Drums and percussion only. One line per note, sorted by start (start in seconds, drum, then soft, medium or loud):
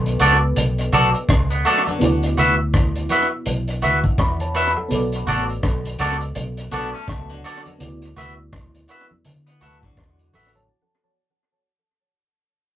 0.06 closed hi-hat soft
0.20 closed hi-hat medium
0.20 high conga soft
0.56 closed hi-hat medium
0.56 low conga medium
0.78 closed hi-hat soft
0.92 closed hi-hat medium
0.92 low conga medium
1.14 closed hi-hat soft
1.29 kick loud
1.29 cross-stick loud
1.29 closed hi-hat medium
1.50 closed hi-hat medium
1.65 closed hi-hat medium
1.87 closed hi-hat soft
1.87 high conga medium
2.01 closed hi-hat medium
2.01 low conga medium
2.23 closed hi-hat medium
2.37 closed hi-hat medium
2.37 low conga medium
2.74 kick loud
2.74 cross-stick medium
2.74 closed hi-hat medium
2.96 closed hi-hat medium
3.09 closed hi-hat medium
3.09 high conga medium
3.46 closed hi-hat medium
3.46 low conga medium
3.68 closed hi-hat medium
3.82 closed hi-hat medium
3.82 low conga medium
4.04 kick medium
4.04 closed hi-hat soft
4.18 kick loud
4.18 cross-stick loud
4.18 closed hi-hat medium
4.40 closed hi-hat medium
4.55 closed hi-hat medium
4.77 high conga soft
4.91 closed hi-hat medium
4.91 low conga medium
5.12 closed hi-hat medium
5.27 closed hi-hat medium
5.27 low conga medium
5.49 closed hi-hat soft
5.63 kick medium
5.63 cross-stick medium
5.63 closed hi-hat medium
5.85 closed hi-hat soft
5.99 closed hi-hat medium
5.99 high conga medium
6.21 closed hi-hat soft
6.35 closed hi-hat medium
6.35 low conga medium
6.57 closed hi-hat medium
6.71 closed hi-hat medium
6.71 low conga medium
7.08 kick loud
7.08 cross-stick loud
7.08 closed hi-hat medium
7.30 closed hi-hat soft
7.44 closed hi-hat medium
7.66 closed hi-hat soft
7.66 high conga soft
7.80 closed hi-hat medium
7.80 low conga medium
8.02 closed hi-hat medium
8.16 closed hi-hat medium
8.16 low conga medium
8.53 kick loud
8.53 cross-stick medium
8.53 closed hi-hat medium
8.53 high conga soft
8.74 closed hi-hat medium
8.88 closed hi-hat medium
9.11 high conga medium
9.25 closed hi-hat medium
9.25 high conga soft
9.25 low conga medium
9.47 closed hi-hat medium
9.61 closed hi-hat medium
9.61 low conga medium
9.83 kick medium
9.83 closed hi-hat soft
9.97 kick loud
9.97 cross-stick loud
9.97 closed hi-hat medium
10.19 closed hi-hat soft
10.33 open hi-hat medium
10.33 high conga medium
10.55 closed hi-hat soft
10.55 high conga soft